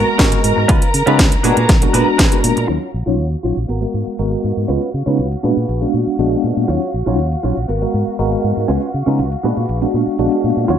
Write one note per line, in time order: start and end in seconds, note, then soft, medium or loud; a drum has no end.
0.00 0.16 G#3 medium
0.00 0.16 A#3 medium
0.00 0.16 B3 medium
0.00 0.16 F#4 medium
0.00 2.70 A#4 medium
0.00 2.70 A#5 medium
0.07 muted fingered electric bass stroke soft
0.18 0.35 G#1 medium
0.18 0.66 G#3 medium
0.18 0.38 B3 medium
0.18 0.66 B3 medium
0.18 0.38 F#4 medium
0.18 0.66 F#4 loud
0.18 0.66 A#4 medium
0.18 0.38 A#4 loud
0.18 kick loud
0.18 snare loud
0.18 open hi-hat medium
0.32 closed hi-hat medium
0.44 0.52 G#2 medium
0.44 open hi-hat loud
0.56 0.64 G#2 medium
0.56 muted clean electric guitar stroke soft
0.68 0.77 C#2 medium
0.68 0.80 G#3 medium
0.68 0.81 B3 medium
0.68 0.88 C#4 loud
0.68 0.81 C#4 medium
0.68 0.88 F4 loud
0.68 0.81 F4 medium
0.68 0.88 B4 loud
0.68 kick loud
0.68 closed hi-hat medium
0.82 closed hi-hat medium
0.94 1.02 C#3 medium
0.94 open hi-hat loud
1.06 1.21 C#3 loud
1.06 1.18 G#3 loud
1.06 1.18 B3 medium
1.06 1.32 C#4 medium
1.06 1.18 C#4 medium
1.06 1.18 D#4 loud
1.06 1.32 F4 medium
1.06 1.32 B4 loud
1.06 closed hi-hat soft
1.19 1.35 C#2 medium
1.19 kick loud
1.19 snare loud
1.19 closed hi-hat medium
1.32 closed hi-hat medium
1.43 1.52 A#2 medium
1.43 1.56 G#3 medium
1.43 1.56 B3 medium
1.43 1.74 D4 medium
1.43 1.56 D4 medium
1.43 1.74 F#4 medium
1.43 1.56 F#4 medium
1.43 1.74 G#4 medium
1.43 1.75 B4 loud
1.43 open hi-hat loud
1.57 1.64 A#2 medium
1.57 closed hi-hat soft
1.69 1.85 A#1 medium
1.69 kick loud
1.69 snare medium
1.69 closed hi-hat medium
1.81 2.16 G#3 medium
1.81 2.16 B3 medium
1.81 2.16 D4 medium
1.81 2.16 F#4 medium
1.81 muted clean electric guitar stroke loud
1.81 closed hi-hat medium
1.93 2.02 A#2 medium
1.93 2.07 D4 medium
1.93 2.07 F#4 medium
1.93 2.07 G#4 medium
1.93 2.07 B4 medium
1.93 open hi-hat loud
2.07 muted fingered electric bass stroke soft
2.18 2.27 A#1 medium
2.18 2.38 D4 medium
2.18 2.38 F#4 medium
2.18 2.38 G#4 medium
2.18 2.38 B4 medium
2.18 kick loud
2.18 snare loud
2.18 closed hi-hat medium
2.32 2.66 G#3 medium
2.32 2.66 B3 medium
2.32 2.66 D4 medium
2.32 2.66 F#4 medium
2.32 closed hi-hat medium
2.44 2.52 A#2 loud
2.44 open hi-hat loud
2.56 2.64 A#2 medium
2.56 muted clean electric guitar stroke soft
2.56 closed hi-hat soft
2.68 2.77 D#2 medium
2.68 2.80 F#3 medium
2.68 2.81 C#4 medium
2.68 2.81 D#4 medium
2.68 2.88 F4 loud
2.68 2.81 F4 medium
2.68 2.88 F#4 medium
2.68 2.88 C#5 loud
2.68 closed hi-hat medium
2.82 closed hi-hat soft
2.94 3.02 A#1 medium
3.06 3.19 A#1 medium
3.06 3.17 F#3 medium
3.06 3.18 C#4 medium
3.06 3.18 D#4 medium
3.06 3.25 F4 medium
3.06 3.18 F4 medium
3.06 3.25 F#4 medium
3.06 3.26 C#5 medium
3.19 3.35 D#2 medium
3.19 closed hi-hat medium
3.32 closed hi-hat soft
3.43 3.52 A#1 medium
3.43 3.55 F#3 medium
3.43 3.55 C#4 medium
3.43 3.56 D#4 medium
3.43 3.57 F4 medium
3.43 3.56 F4 medium
3.43 3.57 F#4 medium
3.43 3.57 C#5 medium
3.57 3.64 A#1 medium
3.57 closed hi-hat soft
3.68 3.85 G#1 medium
3.68 3.82 B3 medium
3.68 3.82 F#4 medium
3.68 3.82 A#4 medium
3.68 closed hi-hat medium
3.81 4.16 G#3 medium
3.81 4.16 B3 medium
3.81 4.16 F#4 medium
3.81 4.16 A#4 medium
3.81 closed hi-hat soft
3.93 4.02 G#2 medium
3.93 muted clean electric guitar stroke soft
4.07 muted fingered electric bass stroke soft
4.19 4.35 G#1 medium
4.19 4.66 G#3 medium
4.19 4.66 B3 medium
4.19 4.66 F#4 medium
4.19 4.66 A#4 medium
4.19 closed hi-hat medium
4.32 closed hi-hat soft
4.44 4.52 G#2 medium
4.57 4.64 G#2 medium
4.68 4.77 C#2 medium
4.68 4.80 G#3 medium
4.68 4.80 B3 medium
4.68 4.88 C#4 loud
4.68 4.81 C#4 medium
4.68 4.88 F4 medium
4.68 4.81 F4 medium
4.68 4.88 B4 loud
4.68 closed hi-hat medium
4.82 closed hi-hat soft
4.94 5.02 C#3 medium
5.06 5.21 C#3 medium
5.06 5.17 G#3 medium
5.06 5.17 B3 medium
5.06 5.25 C#4 medium
5.06 5.18 C#4 medium
5.06 5.18 D#4 medium
5.06 5.25 F4 medium
5.06 5.26 B4 medium
5.19 5.35 C#2 medium
5.19 closed hi-hat medium
5.32 closed hi-hat soft
5.43 5.52 A#2 medium
5.43 5.55 G#3 medium
5.43 5.55 B3 medium
5.43 5.84 D4 medium
5.43 5.55 D4 medium
5.43 5.84 F#4 medium
5.43 5.56 F#4 medium
5.43 5.85 G#4 medium
5.43 5.85 B4 medium
5.57 5.64 A#2 medium
5.57 closed hi-hat soft
5.69 5.85 A#1 medium
5.69 closed hi-hat medium
5.81 6.16 G#3 medium
5.81 6.16 B3 medium
5.81 6.16 D4 medium
5.81 6.16 F#4 medium
5.81 closed hi-hat soft
5.93 6.02 A#2 medium
5.93 muted clean electric guitar stroke soft
6.07 muted fingered electric bass stroke soft
6.19 6.35 A#1 medium
6.19 6.66 G#3 medium
6.19 6.66 B3 medium
6.19 6.66 D4 medium
6.19 6.66 F#4 medium
6.19 closed hi-hat medium
6.32 closed hi-hat soft
6.44 6.52 A#2 medium
6.57 6.64 A#2 medium
6.68 6.77 D#2 medium
6.68 6.80 F#3 medium
6.68 6.80 C#4 medium
6.68 6.81 D#4 medium
6.68 6.88 F4 loud
6.68 6.81 F4 medium
6.68 6.88 F#4 medium
6.68 6.88 C#5 loud
6.68 closed hi-hat medium
6.82 closed hi-hat soft
6.94 7.02 A#1 medium
7.06 7.19 A#1 medium
7.06 7.17 F#3 medium
7.06 7.18 C#4 medium
7.06 7.18 D#4 medium
7.06 7.25 F4 medium
7.06 7.18 F4 medium
7.06 7.26 F#4 medium
7.06 7.26 C#5 medium
7.19 7.35 D#2 medium
7.19 closed hi-hat medium
7.32 closed hi-hat soft
7.43 7.52 A#1 medium
7.43 7.55 F#3 medium
7.43 7.55 C#4 medium
7.43 7.56 D#4 medium
7.43 7.57 F4 medium
7.43 7.56 F4 medium
7.43 7.57 F#4 medium
7.43 7.57 C#5 medium
7.57 7.64 A#1 medium
7.57 closed hi-hat soft
7.68 7.85 G#1 medium
7.68 7.82 B3 medium
7.68 7.82 F#4 medium
7.68 7.82 A#4 medium
7.68 closed hi-hat medium
7.81 8.16 G#3 medium
7.81 8.16 B3 medium
7.81 8.16 F#4 medium
7.81 8.16 A#4 medium
7.81 closed hi-hat soft
7.93 8.02 G#2 medium
7.93 muted clean electric guitar stroke soft
8.07 muted fingered electric bass stroke soft
8.19 8.35 G#1 medium
8.19 8.66 G#3 medium
8.19 8.66 B3 medium
8.19 8.66 F#4 loud
8.19 8.66 A#4 medium
8.19 closed hi-hat medium
8.32 closed hi-hat soft
8.44 8.52 G#2 medium
8.57 8.64 G#2 medium
8.68 8.77 C#2 medium
8.68 8.80 G#3 medium
8.68 8.80 B3 medium
8.68 8.88 C#4 loud
8.68 8.81 C#4 medium
8.68 8.88 F4 medium
8.68 8.81 F4 medium
8.68 8.88 B4 loud
8.68 closed hi-hat medium
8.82 closed hi-hat soft
8.94 9.02 C#3 medium
9.06 9.21 C#3 medium
9.06 9.17 G#3 medium
9.06 9.18 B3 medium
9.06 9.25 C#4 medium
9.06 9.18 C#4 medium
9.06 9.18 D#4 medium
9.06 9.26 F4 medium
9.06 9.26 B4 medium
9.19 9.35 C#2 medium
9.19 closed hi-hat medium
9.32 closed hi-hat soft
9.43 9.52 A#2 medium
9.43 9.55 G#3 medium
9.43 9.55 B3 medium
9.43 9.84 D4 medium
9.43 9.56 D4 medium
9.43 9.84 F#4 medium
9.43 9.56 F#4 medium
9.43 9.85 G#4 medium
9.43 9.85 B4 medium
9.57 9.64 A#2 medium
9.57 closed hi-hat soft
9.69 9.85 A#1 medium
9.69 closed hi-hat medium
9.82 10.16 G#3 medium
9.82 10.16 B3 medium
9.82 10.16 D4 medium
9.82 10.16 F#4 medium
9.82 closed hi-hat soft
9.93 10.02 A#2 medium
9.93 muted clean electric guitar stroke soft
10.07 muted fingered electric bass stroke soft
10.19 10.27 A#1 medium
10.19 10.66 G#3 medium
10.19 10.66 B3 medium
10.19 10.66 D4 medium
10.19 10.66 F#4 medium
10.19 closed hi-hat medium
10.32 closed hi-hat soft
10.44 10.52 A#2 medium
10.57 10.64 A#2 medium
10.68 10.77 D#2 medium
10.68 10.79 F#3 medium
10.68 10.79 C#4 medium
10.68 10.79 D#4 medium
10.68 10.79 F4 loud
10.68 10.79 F4 medium
10.68 10.79 F#4 medium
10.68 10.79 C#5 loud
10.68 10.79 F5 medium
10.68 closed hi-hat medium